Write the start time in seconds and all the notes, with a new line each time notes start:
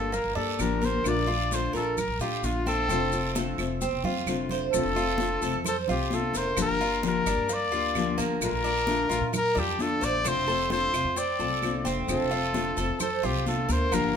Already playing: G1 A#3 D4 F4 G4 A4
0.12 A#3 A#4, muted nylon-string guitar stroke, high conga, long guiro, maracas
0.24 G1
0.35 G2 A#3 D4 G4 A4, high conga
0.59 A1 D3 F3 A#3 D4 G4 A#4, high conga, short guiro, claves, maracas
0.81 A#4 C5, high conga, short guiro, maracas
1.04 A#1 D3 A3 D4 F4, high conga, long guiro, claves, maracas
1.09 D5
1.27 A3 D4 F4, high conga
1.51 D3 A3 D4 F4 C5, high conga, short guiro, maracas
1.73 A#1 A3 D4 F4 A4 A#4, high conga, short guiro, maracas
1.98 A#4, muted nylon-string guitar stroke, high conga, low conga, long guiro, claves, maracas
2.08 A#1
2.19 A#2 A3 D4 F4 G4, high conga, maracas
2.42 A#1 D3 A3 D4 F4, high conga, short guiro, maracas
2.66 C4 A4, high conga, short guiro, maracas
2.88 F1 D3 A3 C4 F4, high conga, long guiro, claves, maracas
3.12 A3 C4 F4, high conga, maracas
3.35 D3 A3 C4 F4 A4, high conga, short guiro, maracas
3.58 F1 A3 C4 F4, high conga, short guiro, claves, maracas
3.81 C4, muted nylon-string guitar stroke, high conga, long guiro, maracas
3.92 F1
4.03 F2 A3 C4 F4, low conga
4.27 F1 D3 A3 C4 F4, low conga, short guiro, claves, maracas
4.49 C5, low conga, short guiro, maracas
4.72 F1 D3 A3 C4 F4 A4, high conga, long guiro, claves, maracas
4.85 F1
4.96 A3 C4 F4, high conga, maracas
5.18 D3 A3 C4 F4, high conga, short guiro, maracas
5.42 F1 A3 C4 F4 A4, high conga, short guiro, maracas
5.54 F2
5.65 A4 C5, muted nylon-string guitar stroke, high conga, low conga, long guiro, claves, maracas
5.88 C2 A3 C4 F4 G4, high conga, low conga, maracas
6.10 D3 A3 C4 F4, high conga, short guiro, maracas
6.15 A4
6.34 F1 A#4 C5, high conga, short guiro, maracas
6.57 G1 D3 F3 A#3 D4 G4, high conga, long guiro, claves, maracas
6.62 A#4
6.69 G1
6.80 A#3 D4 F4 G4, high conga, maracas
7.03 D3 F3 A#3 D4 G4, high conga, short guiro, maracas
7.08 A#4
7.26 G1 A#3 D4 G4, high conga, short guiro, claves, maracas
7.37 G2
7.49 A#3, muted nylon-string guitar stroke, high conga, long guiro, maracas
7.54 D5
7.72 D2 A#3 D4 F4 G4, high conga, maracas
7.95 D3 F3 A#3 D4 G4, high conga, short guiro, claves, maracas
8.18 G1 A#3, high conga, short guiro, maracas
8.41 A#1 D3 A3 D4 F4 A#4, high conga, long guiro, claves, maracas
8.52 A#1
8.64 A3 D4 F4, high conga, maracas
8.87 D3 A3 D4 F4, high conga, short guiro, maracas
9.09 A#1 A3 D4 F4, high conga, short guiro, maracas
9.21 A#2
9.32 A#4, muted nylon-string guitar stroke, high conga, low conga, long guiro, claves, maracas
9.37 A#4
9.55 F2 A3 D4 F4, high conga, low conga, maracas
9.59 G4
9.79 D3 A3 D4 F4 A4, high conga, short guiro, maracas
10.01 A#1 C5 D5, high conga, short guiro, maracas
10.24 F1 D3 A3 C4 F4 C5, long guiro, claves, maracas
10.36 F1
10.47 A3 C4 F4 A4, high conga, maracas
10.69 D3 A3 C4 F4 C5, high conga, short guiro, maracas
10.93 F1 A3 C4 F4, high conga, short guiro, claves, maracas
11.05 F2
11.16 C4 D5, muted nylon-string guitar stroke, high conga, long guiro, maracas
11.39 C2 A3 C4 F4 A4, high conga, maracas
11.62 D3 A3 C4 F4, high conga, short guiro, claves, maracas
11.85 F1 C4, high conga, short guiro, maracas
12.07 F1 D3 A3 C4 F4 A4, long guiro, claves, maracas
12.21 F1
12.31 A3 C4 F4, high conga, maracas
12.53 D3 A3 C4 F4, high conga, short guiro, maracas
12.77 F1 A3 C4 F4 A4, high conga, short guiro, maracas
12.89 F2
13.00 A4 C5, muted nylon-string guitar stroke, high conga, low conga, long guiro, claves, maracas
13.23 C2 A3 C4 F4 G4, high conga, low conga, maracas
13.46 D3 A3 C4 F4 A4, high conga, short guiro, maracas
13.69 D2 A#4 C5, high conga, short guiro, maracas
13.92 G1 D3 F3 A#3 D4 G4 A#4, long guiro, claves, maracas
14.04 G1